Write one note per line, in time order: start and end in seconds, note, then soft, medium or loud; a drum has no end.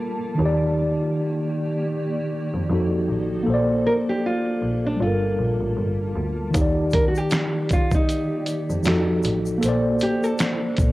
0.00 0.34 G3 medium
0.00 0.37 G3 medium
0.00 0.37 A#3 medium
0.00 0.36 F4 medium
0.00 0.37 F4 medium
0.00 0.37 A4 medium
0.00 0.39 A#4 medium
0.00 0.37 A5 medium
0.35 2.64 D#3 medium
0.35 2.65 D#4 medium
0.39 0.90 D#2 loud
0.39 2.68 D#3 medium
0.39 2.68 A#3 medium
0.39 2.68 G4 medium
0.39 2.67 G4 medium
0.39 2.68 D5 medium
0.46 2.69 D5 medium
2.53 2.67 F2 medium
2.69 3.02 F2 loud
2.69 3.46 F3 medium
2.69 3.47 D#4 medium
2.69 3.48 F#4 medium
2.75 3.45 A4 medium
3.09 3.41 A1 medium
3.43 3.79 A#1 loud
3.43 4.96 A#3 medium
3.43 4.97 A4 medium
3.48 4.99 A#3 medium
3.48 5.00 D4 medium
3.48 4.99 A4 medium
3.48 4.99 C5 medium
3.54 5.01 D5 medium
3.87 3.92 A#4 loud
4.09 4.25 G4 loud
4.26 4.86 F4 medium
4.62 4.95 A#1 medium
4.87 5.02 D4 medium
4.96 6.49 G3 medium
4.96 6.51 F4 medium
5.01 5.33 G1 loud
5.01 6.53 G3 medium
5.01 6.53 A#3 medium
5.01 6.53 F4 medium
5.01 6.13 F4 medium
5.01 6.53 A4 medium
5.01 6.53 A5 medium
5.07 6.55 A#4 medium
5.39 5.58 A#1 loud
5.60 5.75 A1 medium
5.77 6.10 G1 medium
6.15 6.48 D2 medium
6.50 8.79 D#3 medium
6.50 8.81 D#4 medium
6.50 8.83 G4 medium
6.50 8.83 D5 medium
6.54 7.06 D#2 loud
6.54 8.83 D#3 medium
6.54 8.83 A#3 medium
6.54 8.83 G4 medium
6.54 kick loud
6.54 closed hi-hat medium
6.54 shaker medium
6.61 8.84 D5 medium
6.91 7.08 A#4 loud
6.91 kick medium
6.91 closed hi-hat medium
6.91 shaker soft
7.08 7.18 F#4 medium
7.15 7.73 G4 loud
7.15 shaker soft
7.30 finger snap medium
7.30 snare loud
7.30 closed hi-hat medium
7.30 shaker medium
7.69 7.92 F4 medium
7.69 kick medium
7.69 closed hi-hat medium
7.69 shaker medium
7.91 9.21 D#4 medium
7.91 kick medium
7.91 shaker medium
8.09 closed hi-hat medium
8.09 shaker medium
8.46 closed hi-hat medium
8.46 shaker soft
8.69 8.83 F2 medium
8.69 shaker soft
8.83 9.18 F2 loud
8.83 9.61 F3 medium
8.83 9.62 D#4 medium
8.83 9.63 F#4 medium
8.83 snare loud
8.83 closed hi-hat medium
8.83 shaker medium
8.88 9.60 A4 medium
8.88 finger snap medium
9.23 9.57 A1 loud
9.23 closed hi-hat medium
9.23 shaker soft
9.46 shaker soft
9.58 10.92 A#3 medium
9.58 10.92 A4 medium
9.62 9.95 A#1 loud
9.62 10.92 A#3 medium
9.62 10.92 D4 medium
9.62 10.92 A4 medium
9.62 10.92 C5 medium
9.62 closed hi-hat medium
9.62 shaker medium
9.69 10.92 D5 medium
9.99 10.24 G4 medium
9.99 closed hi-hat medium
9.99 shaker soft
10.23 10.92 A4 loud
10.23 shaker soft
10.38 finger snap medium
10.38 snare loud
10.38 closed hi-hat medium
10.38 shaker medium
10.77 10.92 A#1 medium
10.77 kick loud
10.77 closed hi-hat medium
10.77 shaker medium